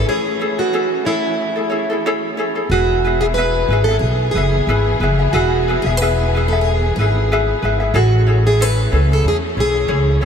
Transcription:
Already playing: string section E3 A3 C#4
0.09 ukulele E4 G#4 C#5, steel-string acoustic guitar G#4
0.40 ukulele E4 G#4 A4 C#5
0.58 ukulele E4 G#4 A4, steel-string acoustic guitar F#4
0.73 ukulele E4 G#4 A4 C#5
1.05 steel-string acoustic guitar E4, ukulele E4 G#4 A4 C#5
1.56 ukulele E4 G#4 A4
1.70 ukulele E4 G#4 A4 C#5
1.90 ukulele E4 G#4 A4
2.06 ukulele E4 G#4 A4 C#5
2.37 ukulele E4 G#4 A4 C#5
2.55 ukulele E4 G#4 A4
2.69 upright bass E1, string section E3 B3 G#4, ukulele E4 G#4 B4, steel-string acoustic guitar F#4
2.73 ukulele E5
3.04 ukulele E4 G#4 B4 E5
3.21 ukulele E4 G#4 E5, steel-string acoustic guitar G#4
3.34 ukulele G#4 B4, steel-string acoustic guitar B4
3.38 ukulele E4 E5
3.69 upright bass G#1, ukulele E4 G#4 B4
3.73 ukulele E5
3.84 steel-string acoustic guitar A4
3.88 ukulele E4 G#4 E5
3.99 upright bass B1, steel-string acoustic guitar G#4
4.31 upright bass F#1, steel-string acoustic guitar G#4, ukulele B4
4.36 ukulele E4 G#4 E5
4.67 upright bass G#1, ukulele E4 G#4 B4 E5
5.00 upright bass F#1, ukulele E4 G#4 B4 E5
5.19 ukulele E4 G#4 E5
5.33 upright bass E1, ukulele E4 G#4 B4 E5, steel-string acoustic guitar F#4
5.68 ukulele E4 G#4 B4 E5
5.82 upright bass E1, steel-string acoustic guitar G#4, ukulele E5
5.87 ukulele E4 G#4
5.97 steel-string acoustic guitar B4
6.01 ukulele E4 G#4 B4 E5
6.34 ukulele E4 G#4 B4 E5
6.48 steel-string acoustic guitar A4
6.53 ukulele E4 G#4 E5
6.61 steel-string acoustic guitar G#4
6.96 upright bass G#1, ukulele E4 B4, steel-string acoustic guitar G#4
7.00 ukulele G#4 E5
7.32 ukulele E4 G#4 B4 E5
7.62 upright bass G#1, ukulele E4 G#4 B4 E5
7.80 ukulele E4 G#4 E5
7.94 upright bass A1, string section E3 A3 C#4, ukulele E4 G#4 A4 C#5, steel-string acoustic guitar F#4
8.27 ukulele E4 G#4 A4 C#5
8.46 ukulele E4 G#4 A4, steel-string acoustic guitar G#4
8.61 ukulele E4 G#4 A4 C#5, steel-string acoustic guitar B4
8.92 upright bass C#2, ukulele E4 G#4 A4 C#5
9.12 ukulele E4 G#4, steel-string acoustic guitar A4
9.25 upright bass E2, steel-string acoustic guitar G#4
9.57 upright bass B1, ukulele E4 G#4 C#5, steel-string acoustic guitar G#4
9.88 upright bass C#2, ukulele E4 G#4 C#5
10.21 ukulele C#5

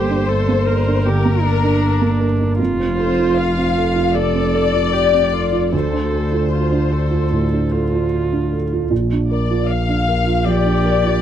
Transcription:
Already playing: double bass G1, felt piano G2 A#3 A4, viola G4, violin section C5
0.10 felt piano D4
0.29 viola A4
0.48 felt piano A#3
0.67 felt piano A4, viola A#4
0.87 felt piano D4
1.05 felt piano D3, viola G4, violin section A#4
1.25 felt piano A#3
1.44 viola D4, felt piano A#4
1.63 felt piano D4
2.02 felt piano A#3
2.20 felt piano A#4
2.40 felt piano D4
2.59 double bass F1, felt piano F2, viola F4
2.79 felt piano C4
2.98 felt piano A4, violin section C5
3.19 felt piano F4
3.37 violin section F5
3.58 felt piano C4
3.77 felt piano A4
3.96 felt piano F4
4.14 felt piano C3, viola A4, violin section D5
4.34 felt piano C4
4.54 felt piano A4
4.74 felt piano F4
4.93 viola G4
5.13 felt piano C4
5.33 viola F4, felt piano A4
5.52 felt piano F4
5.72 felt piano D2, double bass D2, viola A4, violin section C5
5.93 felt piano D4
6.12 felt piano A4
6.32 felt piano F4
6.52 viola F4
6.72 felt piano D4
6.91 felt piano A4, viola A4
7.11 felt piano F4
7.31 felt piano A2
7.52 felt piano D4
7.72 viola F4, felt piano A4
7.92 felt piano F4
8.32 felt piano D4
8.52 felt piano A4
8.73 felt piano F4
8.91 double bass A#1, felt piano A#2
9.12 felt piano D4
9.31 felt piano A#4, violin section D5
9.51 felt piano F4
9.69 violin section F5
9.89 felt piano D4
10.08 felt piano A#4
10.27 felt piano F4
10.46 felt piano F3, viola G4, violin section D5
10.65 felt piano D4
10.85 felt piano A#4
11.04 felt piano F4

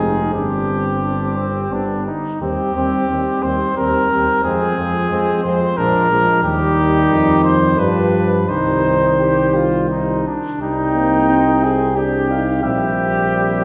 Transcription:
Already playing: bass trombone F1, trombone G#3, french horn C4, trumpet G#4
0.00 flugelhorn D#4
0.33 bass trombone G1, trombone G3, french horn C4, flugelhorn D4, trumpet G4
1.02 flugelhorn D4
1.37 flugelhorn C4
1.71 bass trombone G1, trombone G3, french horn B3, flugelhorn D4
2.07 flugelhorn D#4
2.41 bass trombone D#2, trombone G3, flugelhorn C4, french horn C4, trumpet G4
2.75 bass trombone D#2, trombone G3, french horn C4, flugelhorn C4
3.09 bass trombone D#2, trombone G3, french horn C4, flugelhorn C4
3.43 bass trombone D#2, trombone G3, french horn C4, flugelhorn C4, trumpet C5
3.77 bass trombone D#2, trombone G3, french horn C4, flugelhorn C4, trumpet A#4
4.10 bass trombone D#2, trombone G3, french horn C4, flugelhorn C4
4.43 bass trombone F2, trombone F3, french horn G#3, flugelhorn C4, trumpet G#4
4.77 bass trombone F2, trombone F3, french horn G#3, flugelhorn C4
5.10 bass trombone F2, trombone F3, french horn G#3, flugelhorn C4
5.44 bass trombone F2, trombone F3, french horn G#3, flugelhorn C4, trumpet C5
5.77 bass trombone A#1, trombone F3, french horn G#3, flugelhorn D4, trumpet A#4
6.10 bass trombone A#1, trombone F3, french horn G#3, flugelhorn D4
6.43 bass trombone D#2, trombone D#3, french horn G3, flugelhorn D#4, trumpet G4
7.11 bass trombone F2
7.44 trumpet C5
7.78 bass trombone G2, trombone F3, french horn G3, flugelhorn D4, trumpet B4
8.48 bass trombone C2, trombone D#3, french horn G3, flugelhorn D#4, trumpet C5
9.19 flugelhorn G4
9.55 flugelhorn F4
9.90 flugelhorn D#4
10.27 flugelhorn D4
10.60 bass trombone C2, french horn G3, trombone C4, flugelhorn D#4, trumpet G5
10.95 french horn A#3
11.30 french horn C4
11.64 flugelhorn G#4
11.96 trombone C4, french horn D4, flugelhorn G4, trumpet G5
12.30 french horn D#4, trumpet F5
12.63 bass trombone A#1, french horn G3, trombone C4, flugelhorn G4, trumpet E5

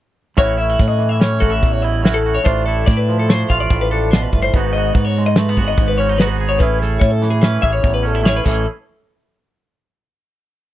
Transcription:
0.37 fingered electric bass A1, clean electric guitar A2 C#4 E4 F#4 C#5, kick, closed hi-hat
0.57 clean electric guitar E4 E5, closed hi-hat
0.70 clean electric guitar F#4
0.80 fingered electric bass A2, clean electric guitar C#5, kick, snare, closed hi-hat
0.88 clean electric guitar D#5
0.99 clean electric guitar E3, closed hi-hat
1.09 clean electric guitar E5
1.20 clean electric guitar C#4 C#5, snare, closed hi-hat
1.40 fingered electric bass A1, clean electric guitar F#4 A4, kick, closed hi-hat
1.50 clean electric guitar E5
1.62 fingered electric bass A1, clean electric guitar E2, kick, closed hi-hat
1.72 clean electric guitar C#5
1.82 clean electric guitar E4 D#5, closed hi-hat
2.03 clean electric guitar A2 C#4 E4 F#4 C#5, snare, closed hi-hat
2.14 clean electric guitar A4
2.26 clean electric guitar F#4, closed hi-hat
2.35 clean electric guitar C#5
2.44 fingered electric bass A1, clean electric guitar A2 A3 D4 F4 C5, kick, closed hi-hat
2.66 clean electric guitar E4 A4, closed hi-hat
2.86 fingered electric bass A2, clean electric guitar D5, kick, snare, closed hi-hat
2.97 clean electric guitar B4
3.09 clean electric guitar F3, closed hi-hat
3.19 clean electric guitar A4
3.29 clean electric guitar A3 C5, snare, closed hi-hat
3.50 fingered electric bass A1, clean electric guitar F4 F5, kick, closed hi-hat
3.60 clean electric guitar D5
3.70 fingered electric bass A1, clean electric guitar A2, kick, closed hi-hat
3.81 clean electric guitar B4
3.91 clean electric guitar D4 A4, closed hi-hat
4.11 clean electric guitar B2 C5, snare, closed hi-hat
4.22 clean electric guitar B4
4.32 fingered electric bass G1, clean electric guitar A2, kick, closed hi-hat
4.43 clean electric guitar C5
4.54 fingered electric bass G#1, clean electric guitar G#2 B3 D#4 F#4 B4, kick, closed hi-hat
4.73 clean electric guitar D#5, closed hi-hat
4.78 clean electric guitar F#4
4.93 fingered electric bass G#2, clean electric guitar B4, kick, closed hi-hat
5.05 clean electric guitar C#5
5.16 clean electric guitar G#3, closed hi-hat
5.26 clean electric guitar D#5
5.36 clean electric guitar A3 B4, snare, closed hi-hat
5.49 clean electric guitar B3
5.57 fingered electric bass G#1, clean electric guitar F#4 G#4, kick, closed hi-hat
5.68 clean electric guitar D#5
5.78 fingered electric bass G#1, clean electric guitar G#2, kick, closed hi-hat
5.88 clean electric guitar B4
5.98 clean electric guitar C#4 C#5, closed hi-hat
6.09 clean electric guitar D#4
6.18 clean electric guitar G#2 B3 D#4 F#4 B4, snare, closed hi-hat
6.28 clean electric guitar G#4
6.40 clean electric guitar G#4, closed hi-hat
6.49 clean electric guitar C#5
6.59 fingered electric bass A1, clean electric guitar A2 C#4 E4 G#4 B4, kick, closed hi-hat
6.79 clean electric guitar G#4 A4, snare, closed hi-hat
7.00 fingered electric bass A2, clean electric guitar C#5, kick, snare, closed hi-hat
7.10 clean electric guitar A4
7.22 clean electric guitar E3, snare, closed hi-hat
7.30 clean electric guitar G#4
7.41 clean electric guitar C#4 B4, snare, closed hi-hat
7.62 fingered electric bass A1, clean electric guitar G#4 E5, kick, closed hi-hat
7.73 clean electric guitar C#5
7.83 fingered electric bass A1, clean electric guitar E2, kick, closed hi-hat
7.94 clean electric guitar B4
8.03 clean electric guitar C#4 A4, closed hi-hat
8.15 clean electric guitar E4
8.23 clean electric guitar A2 C#4 E4 G#4 C#5, snare, closed hi-hat
8.37 clean electric guitar B4
8.45 fingered electric bass A1, clean electric guitar A2 E3 C#4 E4 A4, kick, crash
8.49 clean electric guitar G#4

